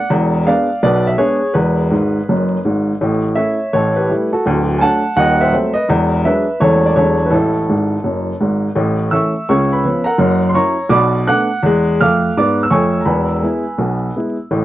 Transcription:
upright piano
Already playing: F#5
0.10 E1 E2
0.47 G#3 B3 D4 D5 F5
0.83 B1 B2 B4 D5
1.07 E5
1.17 G#3 B3 D4 G#4 C#5
1.54 E1 E2 G#4 B4
1.91 G#1 G#2
2.29 F#1 F#2
2.65 G#1 G#2
3.01 A1 A2
3.35 A3 C#4 E4 C#5 E5
3.73 A1 A2 A4 C#5
3.96 G4 B4
4.09 G3 A3 E4
4.33 F#4 A4
4.46 D1 D2
4.79 F#3 A3 D4 F#5 G#5 A5
5.16 D#1 D#2 D#5 F#5
5.41 C5 E5
5.52 F#3 A3 C4
5.74 B4 D#5
5.89 E1 E2
6.25 F#3 G#3 D4 B4 E5
6.60 E1 E2 E3 A3 C#4 A4 C#5
6.86 D5
6.96 E1 E2 F#3 G#3 D4 A4 C#5
7.26 B4
7.30 A1 A2 E4 A4
7.69 G#1 G#2
8.04 F#1 F#2
8.41 G#1 G#2
8.75 A1 A2
9.11 E3 A3 C#4 E5 C#6 E6
9.49 C#2 C#3 C#5 C#6
9.73 B4 B5
9.85 F3 B3 C#4
10.04 A#4 F#5 A#5
10.18 F#1 F#2
10.49 C6
10.54 F#3 C#4 E4 C#5 A#5 C#6
10.89 B1 B2 D5 B5 D6
11.27 A3 B3 D4 F#5 D6 F#6
11.63 E2 G#3
12.01 F2 A3 F5 D6 F6
12.37 G#2 B3 D5 D6
12.63 E6
12.70 F2 A3 C#5 G#5 C#6
13.01 A#5
13.05 E1 E2 B4 G#5 B5
13.43 G#3 B3 E4
13.78 B1 B2
14.16 G#3 B3 E4
14.51 A1 A2

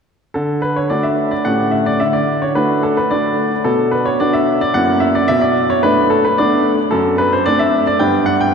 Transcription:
grand piano
0.34 D3 A4
0.62 B4
0.76 C#5
0.90 A3 D4 F#4 D5
1.03 E5
1.31 D5
1.45 A2 A3 C#4 G4 F#5
1.71 E5
1.86 D5
2.00 D3 E5
2.13 D5
2.42 C#5
2.55 A3 D4 F#4 B4
2.83 A4
2.97 B4
3.11 A3 D4 F#4 D5
3.64 B2 A4
3.91 B4
4.06 C#5
4.20 B3 D4 F#4 D5
4.33 E5
4.61 D5
4.74 F#2 A#3 C#4 E4 F#5
5.00 E5
5.15 D5
5.28 B2 E5
5.41 D5
5.70 C#5
5.83 A3 B3 D4 B4
6.10 A4
6.25 B4
6.38 A3 B3 D4 D5
6.91 F#2 A4
7.18 B4
7.32 C5
7.46 A3 C4 D4 D5
7.59 E5
7.87 D5
7.99 G2 B3 D4 G5
8.26 F#5
8.41 G5

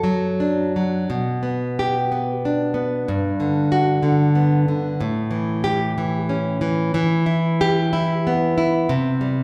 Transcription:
nylon-string guitar
Already playing: F#2 A4
0.04 F#3
0.40 D4
0.76 F#3
1.10 B2
1.43 B3
1.79 G4
2.12 B3
2.45 D4
2.74 B3
3.08 G2
3.40 D3
3.72 F#4
4.03 D3
4.35 B3
4.68 D3
5.01 A2
5.31 E3
5.64 G4
5.98 E3
6.29 C#4
6.61 E3
6.94 E3
7.26 E4
7.61 G4
7.93 E4
8.27 B3
8.58 E4
8.89 C3
9.21 G3

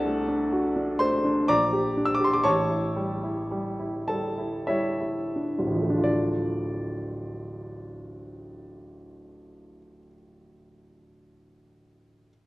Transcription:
grand piano
Already playing: C2 D4 A4 F#5 A5
0.05 A3
0.28 D4
0.52 F#4
0.76 D4
0.99 A3 C5 C6
1.24 D4
1.48 A#1 D5 A#5 D6
1.73 G4
1.97 D4
2.06 E6
2.15 D6
2.20 G4
2.25 C6
2.34 D6
2.44 A1 C#5 A5 C#6
2.69 E4
2.97 G3
3.23 E4
3.52 G3
3.80 E4
4.08 G3 A4 A5
4.38 E4
4.67 G3 E4 C#5 E5
5.01 E4
5.36 D4
5.59 D1
5.67 A1
5.72 F3 E4
5.82 A3
5.90 D4
5.97 F4
6.04 D5

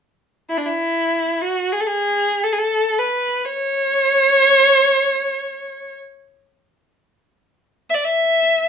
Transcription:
violin
0.50 E4
0.58 D4
0.65 E4
1.42 F#4
1.72 G#4
1.81 A4
1.87 G#4
2.44 A4
2.53 G#4
2.59 A4
2.99 B4
3.45 C#5
7.90 E5
7.94 D5
8.04 E5

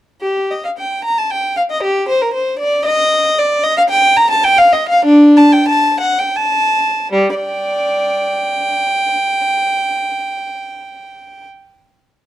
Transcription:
violin
0.21 G4
0.51 D#5
0.65 F5
0.78 G5
1.04 A#5
1.18 A5
1.30 G5
1.57 F5
1.71 D#5
1.83 G4
2.08 C5
2.22 A#4
2.34 C5
2.59 D5
2.86 D#5
3.38 D5
3.63 D#5
3.77 F5
3.90 G5
4.16 A#5
4.30 A5
4.44 G5
4.58 F5
4.73 D#5
4.89 F5
5.05 D4
5.37 A5
5.53 G5
5.68 A5
6.00 F#5
6.19 G5
6.36 A5
7.12 G3
7.34 D5 G5

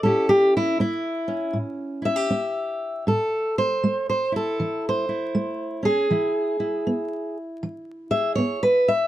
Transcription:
steel-string acoustic guitar
0.03 A2 C#4 E4 G4 A4
0.29 G4
0.57 E4
0.80 C#4 E4
1.28 C#4
1.53 A2
2.02 E4 E5
2.16 G4
2.30 C#4
3.07 A2 A4
3.58 C5
3.84 A3
4.10 C5
4.32 E4
4.36 A4
4.60 E3
4.89 C5
5.09 E4
5.35 A3
5.83 C#4 G#4
6.10 E3 E4
6.60 E4
6.87 B3
7.63 E3
8.11 G#4 E5
8.35 B3 C#5
8.63 B4
8.88 E5

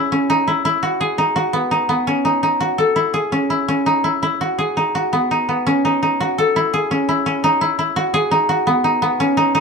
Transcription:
koto
Already playing: B3 C#4 E4 F#4 G#4
0.12 C#4
0.30 D#4
0.48 E4
0.65 E4
0.83 F#4
1.01 G#4
1.18 D#4
1.36 F#4
1.53 B3
1.71 D#4
1.89 B3
2.07 C#4
2.25 D#4
2.43 D#4
2.60 F#4
2.78 A4
2.96 E4
3.14 G#4
3.32 C#4
3.50 E4
3.68 C#4
3.86 D#4
4.04 E4
4.23 E4
4.41 F#4
4.58 G#4
4.77 D#4
4.95 F#4
5.13 B3
5.31 D#4
5.49 B3
5.67 C#4
5.85 D#4
6.03 D#4
6.20 F#4
6.38 A4
6.56 E4
6.73 G#4
6.91 C#4
7.09 E4
7.26 C#4
7.44 D#4
7.61 E4
7.79 E4
7.96 F#4
8.14 G#4
8.31 D#4
8.49 F#4
8.67 B3
8.84 D#4
9.02 B3
9.20 C#4
9.37 D#4
9.55 D#4

